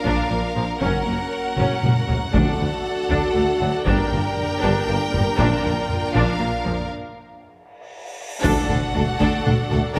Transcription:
Already playing: A#3 D4 F4 A#4 D5 F5
0.04 A#1 A#2 D4, taiko
0.30 A#1 A#2 A#3
0.55 A#1 A#2 F3
0.81 F#1 F#2 A#3 C#4 F#4 A#4 F#5, taiko
1.06 F#1 F#2 A#3
1.57 F#1 F#2 C#4, taiko mid
1.82 F#1 F#2 A#3, taiko mid
2.07 F#1 F#2 F#3, taiko low
2.33 D2 A3 D4 F#4 A4 D5, taiko
2.58 D2 A3
3.10 D2 D4, taiko
3.35 D2 A3
3.61 D2 F#3
3.86 G1 G2 A#3 D4 G4 A#4 G5, taiko
4.11 G1 G2 A#3, taiko low-mid
4.38 taiko low-mid
4.62 G1 G2 D4, taiko
4.87 G1 G2 A#3
5.13 G1 G2 G3, taiko low-mid
5.38 A#1 A#2 D4 F4, taiko
5.64 A#1 A#2 A#3, taiko low-mid
5.90 taiko low-mid
6.14 A#1 A#2 D4 F5, taiko
6.40 A#1 A#2 A#3
6.65 A#1 A#2 F3, taiko low-mid
6.91 cymbal swell
8.42 D2 D4 F#4 A4 D5 F#5, taiko, impact
8.68 D2 D4 A4, taiko mid
8.93 D2 A3 D4 F#4 A4, taiko mid
9.19 D2 D4 A4, taiko
9.44 D2 D4 A4, taiko mid
9.70 D2 A3 D4 F#4 A4, taiko mid
9.96 G2 D4 G4

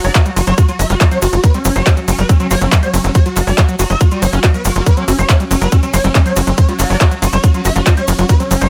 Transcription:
Already playing: F#3 F#4
0.04 F#1 F#3 D5, open hi-hat, cabasa
0.15 F#3 F#4, kick, clap, closed hi-hat, cabasa
0.26 G3, closed hi-hat, cabasa
0.36 F#1 F#3 F#4, open hi-hat, ride, cabasa
0.47 F#1 F#3 C#5, closed hi-hat, cabasa
0.58 F#4, kick, closed hi-hat, cabasa
0.68 F#3 F#4, closed hi-hat, cabasa
0.79 F#1 F#3 E5, open hi-hat, ride, cabasa
0.90 F#1 G3 F#4, closed hi-hat, cabasa
1.01 F#3 F#4, kick, clap, closed hi-hat, cabasa
1.11 F#3 C#5, closed hi-hat, cabasa
1.22 F#1 F#4, open hi-hat, ride, cabasa
1.33 F#1 F#3 F#4, closed hi-hat, cabasa
1.44 F#3 B4, kick, closed hi-hat, cabasa
1.54 G3 C#4, closed hi-hat, cabasa
1.65 F#1 F#3 C#4, open hi-hat, ride, cabasa
1.76 F#1 F#3 C#5, closed hi-hat, cabasa
1.86 C#4 F#4, kick, clap, closed hi-hat, cabasa
1.97 F#3, closed hi-hat, cabasa
2.08 F#1 F#3 C#4, open hi-hat, ride, cabasa
2.19 F#1 G3 B4, closed hi-hat, cabasa
2.29 F#3 C#4, kick, closed hi-hat, cabasa
2.40 F#3 C#4, closed hi-hat, cabasa
2.51 F#1 A#3 F#4 C#5, open hi-hat, ride, cabasa
2.61 F#1 F#3 A#3 C#4, closed hi-hat, cabasa
2.72 F#3 C#4, kick, clap, closed hi-hat, cabasa
2.83 G3 C#5, closed hi-hat, cabasa
2.94 F#1 F#3 C#4, open hi-hat, ride, cabasa
3.04 F#1 F#3 C#4, closed hi-hat, cabasa
3.15 F#4 C#5, kick, closed hi-hat, cabasa
3.26 F#3 F#4, closed hi-hat, cabasa
3.36 F#1 F#3 F#4, clap, open hi-hat, ride, cabasa
3.47 F#1 G3 D5, open hi-hat, cabasa
3.58 F#3 F#4, kick, clap, closed hi-hat, cabasa
3.69 F#3, closed hi-hat, cabasa
3.79 F#1 F#3 F#4, open hi-hat, ride, cabasa
3.90 F#1 F#3 E5, closed hi-hat, cabasa
4.00 F#3 F#4, kick, closed hi-hat, cabasa
4.11 G3 F#4, closed hi-hat, cabasa
4.22 F#1 F#3 C#5, open hi-hat, ride, cabasa
4.33 F#1 C#4 F#4, closed hi-hat, cabasa
4.44 F#4, kick, clap, closed hi-hat, cabasa
4.54 F#3 B4, closed hi-hat, cabasa
4.65 F#1 G3 A#3 F#4, open hi-hat, ride, cabasa
4.75 F#1 F#3 F#4, closed hi-hat, cabasa
4.86 F#3 C#4 B4, kick, closed hi-hat, cabasa
4.97 F#3 C#4, closed hi-hat, cabasa
5.08 F#1 C#4 F#4, open hi-hat, ride, cabasa
5.19 F#1 F#3 C#5, closed hi-hat, cabasa
5.29 F#3 C#4, kick, clap, closed hi-hat, cabasa
5.40 G3, closed hi-hat, cabasa
5.51 F#1 F#3 C#4, open hi-hat, ride, cabasa
5.61 F#1 F#3 B4, closed hi-hat, cabasa
5.72 C#4 F#4, kick, closed hi-hat, cabasa
5.83 F#3 C#4, closed hi-hat, cabasa
5.94 F#1 F#3 A#3 C#5, open hi-hat, ride, cabasa
6.04 F#1 G3 A#3 C#4, closed hi-hat, cabasa
6.15 F#3 C#4, kick, clap, closed hi-hat, cabasa
6.26 F#3 C#5, closed hi-hat, cabasa
6.36 F#1 C#4 F#4, open hi-hat, ride, cabasa
6.47 F#1 F#3 C#4, closed hi-hat, cabasa
6.58 F#3 C#5, kick, closed hi-hat, cabasa
6.68 G3 F#4, closed hi-hat, cabasa
6.79 F#1 F#3 F#4, clap, open hi-hat, ride, cabasa
6.90 F#1 F#3 D5, open hi-hat, cabasa
7.01 F#4, kick, clap, closed hi-hat, cabasa
7.11 F#3, closed hi-hat, cabasa
7.22 F#1 F#3 F#4, open hi-hat, ride, cabasa
7.33 F#1 G3 C#5, closed hi-hat, cabasa
7.44 F#3 F#4, kick, closed hi-hat, cabasa
7.54 F#3 F#4, closed hi-hat, cabasa
7.65 F#1 F#4 E5, open hi-hat, ride, cabasa
7.76 F#1 F#3 F#4, closed hi-hat, cabasa
7.86 F#3 F#4, kick, clap, closed hi-hat, cabasa
7.97 G3 C#5, closed hi-hat, cabasa
8.08 F#1 F#3 F#4, open hi-hat, ride, cabasa
8.18 F#1 F#3 F#4, closed hi-hat, cabasa
8.29 F#4 B4, kick, closed hi-hat, cabasa
8.40 F#3 C#4, closed hi-hat, cabasa
8.51 F#1 F#3 C#4, open hi-hat, ride, cabasa
8.61 F#1 G3 C#5, closed hi-hat, cabasa

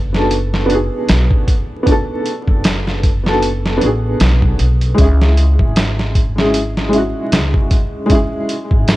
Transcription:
Already playing: F#1 B3 D4 F#4 A4
0.13 B3 D4 F#4, snare
0.17 A4
0.31 closed hi-hat
0.54 snare
0.66 B3 D4, closed hi-hat
0.72 F#4 G#4
1.09 B1, snare, closed hi-hat
1.31 kick
1.48 kick, closed hi-hat
1.83 B3 D4, kick, closed hi-hat
1.88 F#4 A4
2.26 closed hi-hat
2.48 F#1, kick
2.64 snare, closed hi-hat
2.87 snare
3.03 kick, closed hi-hat
3.24 B3 D4 F#4, snare
3.28 A4
3.42 closed hi-hat
3.66 snare
3.77 B3 D4, closed hi-hat
3.82 A1 F#4
3.86 G#4
4.20 B1, snare, closed hi-hat
4.42 kick
4.59 B1, closed hi-hat
4.81 closed hi-hat
4.95 C#2 G#3 C#4, kick, closed hi-hat
5.00 E4 G#4
5.21 snare
5.37 closed hi-hat
5.59 G#1, kick
5.76 snare, closed hi-hat
5.99 snare
6.15 kick, closed hi-hat
6.36 G#3 C#4 E4, snare
6.40 G#4
6.54 closed hi-hat
6.77 snare
6.89 G#3 C#4, closed hi-hat
6.95 E4 F#4
7.32 C#2, snare, closed hi-hat
7.54 kick
7.71 kick, closed hi-hat
8.06 G#3 C#4, kick, closed hi-hat
8.12 E4 G#4
8.49 closed hi-hat
8.71 G#1, kick
8.88 snare, closed hi-hat

